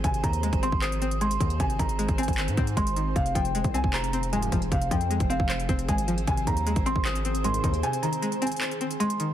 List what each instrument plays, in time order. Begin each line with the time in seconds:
Already playing: ambient pad G#4 C5
0.04 808-style bass G#1, synth pluck C3, ambient pad D#3 C4, grand piano G#5, kick, closed hi-hat
0.14 closed hi-hat
0.24 808-style bass D#2, synth pluck D#3, grand piano A#5, kick, closed hi-hat
0.33 closed hi-hat
0.43 synth pluck G#3, closed hi-hat
0.53 808-style bass G#1, kick, closed hi-hat
0.63 synth pluck C4, grand piano C6, closed hi-hat
0.72 808-style bass G#1, kick
0.82 synth pluck C5, grand piano D#6, clap, closed hi-hat
0.92 closed hi-hat
1.02 synth pluck C4, closed hi-hat
1.11 closed hi-hat
1.21 synth pluck G#3, grand piano C6, closed hi-hat
1.31 closed hi-hat
1.40 808-style bass D#2, synth pluck D#3, kick, closed hi-hat
1.50 closed hi-hat
1.60 808-style bass G#1, synth pluck C3, grand piano G#5, kick, closed hi-hat
1.70 closed hi-hat
1.79 808-style bass G#1, synth pluck D#3, grand piano A#5, kick, closed hi-hat
1.89 closed hi-hat
1.99 synth pluck G#3, closed hi-hat
2.09 808-style bass G#1, kick, closed hi-hat
2.18 synth pluck C4, grand piano G#5, closed hi-hat
2.23 closed hi-hat
2.28 808-style bass G#1, kick, closed hi-hat
2.33 closed hi-hat
2.38 synth pluck C5, clap, closed hi-hat
2.48 808-style bass G#2, closed hi-hat
2.57 808-style bass G#2, synth pluck C4, kick, closed hi-hat
2.67 closed hi-hat
2.77 808-style bass G#1, synth pluck G#3, grand piano C6, kick, closed hi-hat
2.87 closed hi-hat
2.96 synth pluck D#3, closed hi-hat
3.16 808-style bass F1, synth pluck C3, ambient pad F3 C4 G#4, grand piano F5, kick, closed hi-hat
3.26 closed hi-hat
3.35 808-style bass F1, synth pluck F3, grand piano G5, kick, closed hi-hat
3.45 closed hi-hat
3.55 synth pluck G#3, closed hi-hat
3.64 808-style bass C2, kick, closed hi-hat
3.74 synth pluck C4, grand piano G#5, closed hi-hat
3.84 808-style bass F1, kick
3.94 synth pluck C5, grand piano A#5, clap, closed hi-hat
4.04 closed hi-hat
4.13 synth pluck C4, closed hi-hat
4.23 closed hi-hat
4.33 analog polysynth C2 G#2 F3, synth pluck G#3, grand piano G#5, closed hi-hat
4.42 closed hi-hat
4.52 808-style bass F1, synth pluck F3, kick, closed hi-hat
4.62 closed hi-hat
4.72 808-style bass F1, synth pluck C3, grand piano F5, kick, closed hi-hat
4.81 closed hi-hat
4.91 808-style bass F2, synth pluck F3, grand piano G5, kick, closed hi-hat
5.01 closed hi-hat
5.10 synth pluck G#3, closed hi-hat
5.20 808-style bass F1, kick, closed hi-hat
5.30 synth pluck C4, grand piano F5, closed hi-hat
5.40 808-style bass F1, kick
5.49 synth pluck C5, clap, closed hi-hat
5.60 closed hi-hat
5.69 808-style bass F1, synth pluck C4, kick, closed hi-hat
5.79 closed hi-hat
5.89 808-style bass G#1, synth pluck G#3, grand piano G#5, kick, closed hi-hat
5.98 closed hi-hat
6.08 synth pluck F3, closed hi-hat
6.18 closed hi-hat
6.27 808-style bass G#1, synth pluck C3, ambient pad D#3 C5, grand piano G#5, kick, closed hi-hat
6.37 closed hi-hat
6.47 808-style bass D#2, synth pluck D#3, grand piano A#5, kick, closed hi-hat
6.57 closed hi-hat
6.67 synth pluck G#3, closed hi-hat
6.76 808-style bass G#1, kick, closed hi-hat
6.86 synth pluck C4, grand piano C6, closed hi-hat
6.96 808-style bass G#1, kick
7.05 synth pluck C5, grand piano D#6, clap, closed hi-hat
7.16 closed hi-hat
7.25 synth pluck C4, closed hi-hat
7.35 closed hi-hat
7.44 analog polysynth C2 G#2 D#3, synth pluck G#3, grand piano C6, closed hi-hat
7.54 closed hi-hat
7.64 808-style bass D#2, synth pluck D#3, kick, closed hi-hat
7.74 closed hi-hat
7.83 synth pluck C3, grand piano G#5, closed hi-hat
7.93 closed hi-hat
8.02 synth pluck D#3, grand piano A#5, closed hi-hat
8.13 closed hi-hat
8.22 synth pluck G#3, closed hi-hat
8.32 closed hi-hat
8.42 synth pluck C4, grand piano G#5, closed hi-hat
8.47 closed hi-hat
8.52 closed hi-hat
8.56 closed hi-hat
8.61 synth pluck C5, clap, closed hi-hat
8.71 closed hi-hat
8.81 synth pluck C4, closed hi-hat
8.91 closed hi-hat
9.00 synth pluck G#3, grand piano C6, closed hi-hat
9.10 closed hi-hat
9.20 synth pluck D#3, closed hi-hat